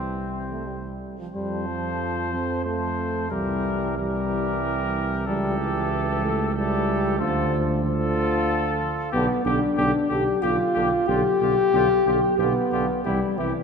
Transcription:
Already playing: tuba C2, trombone E3, french horn G3, trumpet C4, cornet C5
0.50 trombone A3
0.67 trombone G3
1.19 trombone F3
1.35 tuba F2, trombone F3, french horn G3, trumpet A4, cornet C5
1.67 french horn F3
2.33 french horn C4
2.65 trombone F3, french horn A3, trumpet A4, cornet C5
3.31 tuba C2, trombone E3, french horn G3, trumpet G4, cornet A#4
3.97 trombone E3, french horn G3, trumpet G4, cornet A#4
5.26 tuba C#2, trombone E3, french horn G3, trumpet G4, cornet A4
5.59 french horn E3
6.23 french horn A3
6.55 trombone E3, french horn G3, trumpet G4, cornet A4
7.19 tuba D2, trombone D3, french horn F3, trumpet F4, cornet A4
7.84 trombone D3, french horn F3, trumpet F4, cornet A4
9.12 tuba B1, trombone D3, french horn B3, cornet G4, trumpet G4
9.45 tuba B1, trombone D3, french horn D4, cornet G4, trumpet G4
9.77 tuba B1, trombone D3, cornet G4, trumpet G4
10.09 tuba B1, trombone D3, cornet G4, trumpet G4, french horn G4
10.42 tuba B1, trombone D3, french horn F4, cornet G4, trumpet G4
10.74 tuba B1, trombone D3, cornet G4, trumpet G4
11.07 tuba B1, trombone D3, trumpet F4, cornet G4, french horn G4
11.40 tuba B1, trombone D3, trumpet F4, cornet G4
11.73 tuba B1, trombone D3, trumpet F4, cornet G4
12.06 tuba B1, trombone D3, trumpet F4, cornet G4
12.38 tuba B1, trombone D3, french horn B3, trumpet F4, cornet G4
12.72 tuba B1, trombone D3, trumpet F4, cornet G4
13.05 tuba C2, trombone E3, french horn G3, trumpet E4, cornet G4
13.38 tuba C2, trombone E3, french horn E3, trumpet E4, cornet G4

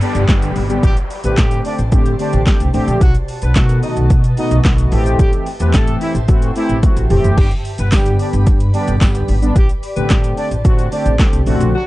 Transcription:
Already playing: ambient pad G4 B4 D5 B5, downlifter
0.01 analog polysynth D3 G3 B3 G4, horn section D4 D5, open hi-hat, shaker
0.15 upright bass G1, closed hi-hat, shaker
0.28 upright bass G1, analog polysynth D3 G3 B3 G4, kick, snare, clap, closed hi-hat, shaker
0.42 closed hi-hat, shaker
0.56 upright bass G#1, open hi-hat, shaker
0.69 analog polysynth D3 G3 B3 G4, closed hi-hat, shaker
0.83 upright bass A1, horn section G3 G4, ambient pad C5 D5 A5, kick, closed hi-hat, shaker
0.97 closed hi-hat, shaker
1.10 open hi-hat, shaker
1.24 upright bass A1, analog polysynth D3 A3 C4 G4, horn section B3 B4, closed hi-hat, shaker
1.37 upright bass A2, horn section G3 G4, kick, snare, clap, closed hi-hat, shaker
1.51 closed hi-hat, shaker
1.65 horn section D4 D5, open hi-hat, shaker
1.79 upright bass A1, closed hi-hat, shaker
1.92 upright bass A2, analog polysynth D3 A3 C4 G4, kick, closed hi-hat, shaker
2.06 closed hi-hat, shaker
2.19 analog polysynth D3 A3 C4 G4, horn section D4 D5, open hi-hat, shaker
2.33 upright bass A1, closed hi-hat, shaker
2.46 analog polysynth D3 A3 C4 G4, kick, snare, clap, closed hi-hat, shaker
2.60 upright bass C2, closed hi-hat, shaker
2.74 upright bass A1, analog polysynth D3 A3 C4 G4, open hi-hat, shaker
2.88 upright bass A#1, closed hi-hat, shaker
3.01 upright bass B1, horn section F#3 F#4, ambient pad F#4 B4 D#5, kick, closed hi-hat, shaker
3.15 closed hi-hat, shaker
3.28 open hi-hat, shaker
3.42 upright bass B1, horn section B3 B4, closed hi-hat, shaker
3.55 upright bass B2, analog polysynth D#3 A3 B3 F#4, horn section F#3 F#4, kick, snare, clap, closed hi-hat, shaker
3.69 closed hi-hat, shaker
3.83 horn section D#4 D#5, open hi-hat, shaker
3.97 upright bass B1, closed hi-hat, shaker
4.10 upright bass B2, kick, closed hi-hat, shaker
4.24 closed hi-hat, shaker
4.37 analog polysynth D#3 A3 B3 F#4, horn section D#4 D#5, open hi-hat, shaker
4.51 upright bass B1, closed hi-hat, shaker
4.65 analog polysynth D#3 A3 B3 F#4, kick, snare, clap, closed hi-hat, shaker
4.78 closed hi-hat, shaker
4.92 upright bass A1, analog polysynth E3 A3 C4 G4, ambient pad G4 C5 E5, open hi-hat, shaker
5.06 closed hi-hat, shaker
5.19 upright bass A1, horn section G3 G4, kick, closed hi-hat, shaker
5.33 closed hi-hat, shaker
5.46 open hi-hat, shaker
5.60 upright bass E2, analog polysynth E3 A3 C4 G4, horn section B3 B4, closed hi-hat, shaker
5.73 upright bass A2, horn section A3 A4, kick, snare, clap, closed hi-hat, shaker
5.87 closed hi-hat, shaker
6.01 horn section E3 E4, open hi-hat, shaker
6.15 upright bass A1, closed hi-hat, shaker
6.28 upright bass A2, analog polysynth E3 A3 C4 F#4, kick, closed hi-hat, shaker
6.42 closed hi-hat, shaker
6.56 analog polysynth E3 A3 C4 G4, horn section E3 E4, open hi-hat, shaker
6.69 upright bass A1, closed hi-hat, shaker
6.83 analog polysynth E3 A3 C4 F#4, kick, closed hi-hat, high tom, shaker
6.97 upright bass A1, closed hi-hat, shaker
7.10 upright bass F1, analog polysynth E3 A3 C4 G4, mid tom, open hi-hat, shaker
7.24 upright bass F#1, closed hi-hat, floor tom, shaker
7.38 upright bass G1, horn section G3 G4, ambient pad B4 D5 B5, kick, crash
7.51 closed hi-hat, shaker
7.65 open hi-hat, shaker
7.78 upright bass G1, horn section B3 B4, closed hi-hat, shaker
7.92 upright bass G2, analog polysynth D3 G3 B3 G4, horn section G3 G4, kick, snare, clap, closed hi-hat, tambourine, shaker
8.06 closed hi-hat, shaker
8.19 horn section D4 D5, open hi-hat, shaker
8.33 upright bass G1, closed hi-hat, shaker
8.47 upright bass G2, kick, closed hi-hat, shaker
8.60 closed hi-hat, shaker
8.74 analog polysynth D3 G3 B3 G4, horn section D4 D5, open hi-hat, shaker
8.88 upright bass G1, closed hi-hat, shaker
9.01 upright bass G1, analog polysynth D3 G3 B3 G4, kick, snare, clap, closed hi-hat, tambourine, shaker
9.15 closed hi-hat, shaker
9.28 upright bass G#1, open hi-hat, shaker
9.42 analog polysynth D3 G3 B3 D4, closed hi-hat, shaker
9.56 upright bass A1, horn section G3 G4, ambient pad G4 C5 A5, kick, closed hi-hat, shaker
9.69 closed hi-hat, shaker
9.83 open hi-hat, shaker
9.96 upright bass A1, analog polysynth D3 A3 C4 G4, horn section B3 B4, closed hi-hat, shaker
10.10 upright bass A2, horn section G3 G4, kick, snare, clap, closed hi-hat, shaker
10.24 closed hi-hat, shaker
10.37 horn section D4 D5, open hi-hat, shaker
10.51 upright bass A1, closed hi-hat, shaker
10.65 upright bass A2, analog polysynth D3 A3 C4 F#4, kick, closed hi-hat, shaker
10.79 closed hi-hat, shaker
10.92 analog polysynth D3 A3 C4 G4, horn section D4 D5, open hi-hat, shaker
11.06 upright bass A1, closed hi-hat, shaker
11.19 analog polysynth D3 A3 C4 G4, kick, snare, clap, closed hi-hat, shaker
11.33 upright bass C2, closed hi-hat, shaker
11.46 upright bass A1, analog polysynth D3 A3 C4 F#4, open hi-hat, shaker
11.60 upright bass A#1, closed hi-hat, shaker
11.74 horn section F#3 F#4, ambient pad F#4 B4 D#5 A5

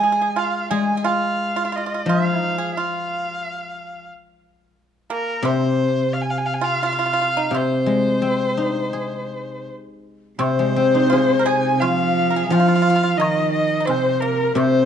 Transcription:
Already playing: guzheng G#3, erhu G#5
0.03 pipa G#4
0.12 pipa G#4
0.22 pipa G#4
0.36 pipa F4, erhu F5
0.71 guzheng G#3, pipa G#4, erhu G#5
0.97 pipa G#4
1.04 pipa F4, erhu F5
1.56 pipa F4
1.65 pipa F4
1.72 pipa F4, erhu D#5
1.77 pipa F4
1.86 pipa F4
1.94 pipa F4
2.06 guzheng F3, pipa F4, erhu F5
2.39 pipa D#4
2.58 pipa G#4
2.76 pipa F4, erhu F5
5.10 pipa A#3, erhu A#4
5.42 guzheng C3, pipa C4, erhu C5
6.13 erhu F5
6.21 erhu G#5
6.30 erhu F5
6.37 erhu G#5
6.46 erhu F5
6.54 erhu G#5
6.61 pipa F4, erhu F5
6.83 pipa F4, erhu F5
6.92 pipa F4
6.99 pipa F4
7.06 pipa F4
7.13 pipa F4
7.21 pipa F4
7.37 pipa D#4
7.51 guzheng C3, pipa C4
7.56 erhu C5
7.86 guzheng G#3
8.22 guzheng C4
8.57 guzheng D#4
8.93 guzheng G#4
10.39 guzheng C3, cello C3, pipa C4, erhu C5, dizi C5, high woodblock
10.59 guzheng G#3
10.76 guzheng C4
10.95 guzheng D#4
11.10 pipa F4, guzheng G#4, low woodblock
11.39 pipa A#4
11.46 pipa G#4, erhu G#5
11.80 cello F3, pipa F4, erhu F5, dizi F5, high woodblock
12.30 pipa A#4
12.36 pipa G#4
12.46 cello F3, erhu F5, dizi G#5
12.50 guzheng F3, pipa F4, dizi F5, low woodblock
12.60 pipa F4
12.68 pipa F4
12.75 pipa F4
12.82 pipa F4
12.90 pipa F4
12.96 pipa F4
13.03 pipa F4
13.17 cello D#3, pipa D#4, erhu D#5, high woodblock
13.23 dizi D#5
13.52 erhu D#5
13.80 pipa D#4
13.85 cello C3, pipa C4, erhu C5
13.90 dizi C5, low woodblock
14.20 pipa A#3, erhu A#4, dizi A#4
14.55 guzheng C3, cello C3, pipa C4, erhu C5, dizi C5, high woodblock

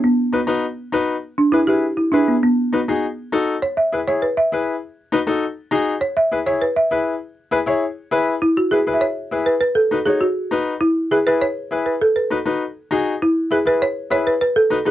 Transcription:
0.04 marimba B3
0.33 upright piano D#4 F#4 B4
0.47 upright piano D#4 F#4 B4
0.92 upright piano D#4 F#4 B4
1.38 marimba D4
1.52 marimba E4, upright piano E4 G#4 B4
1.67 upright piano E4 G#4 B4, marimba G4
1.97 marimba E4
2.12 marimba D4, upright piano E4 G#4 B4
2.28 marimba B3
2.43 marimba B3
2.73 upright piano D#4 F#4 B4
2.88 upright piano D#4 F#4 G#4
3.32 upright piano D#4 F#4 A4
3.62 marimba C#5
3.77 marimba E5
3.92 upright piano E4 G#4 B4
4.07 upright piano E4 G#4 C#5, marimba C#5
4.22 marimba B4
4.37 marimba E5
4.52 upright piano E4 G#4 B4
5.12 upright piano D#4 F#4 B4
5.27 upright piano D#4 F#4 A4
5.71 upright piano D#4 F#4 G#4
6.01 marimba C#5
6.17 marimba E5
6.32 upright piano E4 G#4 B4
6.46 upright piano E4 G#4 C#5, marimba C#5
6.62 marimba B4
6.76 marimba E5
6.91 upright piano E4 G#4 B4
7.51 upright piano E4 G#4 B4
7.66 upright piano E4 G#4 C#5
8.11 upright piano E4 G#4 B4
8.42 marimba E4
8.57 marimba F#4
8.71 upright piano E4 G#4 B4, marimba G#4
8.87 upright piano E4 G#4 B4
8.94 marimba E5
9.01 marimba C#5
9.31 upright piano E4 G#4 B4
9.46 marimba B4
9.61 marimba B4
9.75 marimba A4
9.91 upright piano D#4 F#4 B4
10.06 upright piano D#4 F#4 C#5, marimba G#4
10.21 marimba F#4
10.51 upright piano D#4 F#4 B4
10.81 marimba E4
11.11 upright piano E4 G#4 B4, marimba G#4
11.27 upright piano E4 G#4 B4, marimba B4
11.41 marimba C#5
11.71 upright piano E4 G#4 B4
11.86 marimba B4
12.01 marimba A4
12.16 marimba B4
12.30 upright piano D#4 F#4 B4
12.46 upright piano D#4 F#4 B4
12.91 upright piano D#4 F#4 G#4
13.22 marimba E4
13.51 upright piano E4 G#4 B4, marimba G#4
13.65 upright piano E4 G#4 B4, marimba B4
13.82 marimba C#5
14.10 upright piano E4 G#4 B4, marimba C#5
14.27 marimba B4
14.41 marimba B4
14.56 marimba A4
14.70 upright piano D#4 F#4 B4
14.85 upright piano D#4 F#4 B4, marimba G#4

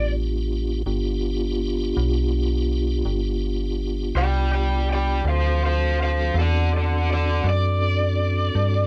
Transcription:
Already playing: fm bass A1, tonewheel organ B3 D4 F4 G4, electric slide guitar D5
0.86 fm bass G1, tonewheel organ B3 D4 F4 G4
1.97 fm bass B1
3.05 fm bass G1
4.15 fm bass C2, electric slide guitar D5 G5
4.54 electric slide guitar D5 G5
4.93 electric slide guitar D5 G5
5.23 fm bass D2, tonewheel organ C4 D4 F#4 A4
5.28 electric slide guitar C5 F5
5.66 electric slide guitar C5 F5
6.03 electric slide guitar C5 F5
6.34 fm bass E2
6.39 electric slide guitar A4 D5
6.77 electric slide guitar A4 D5
7.13 electric slide guitar A4 D5
7.44 fm bass F#2
7.49 electric slide guitar D5
8.55 fm bass G2

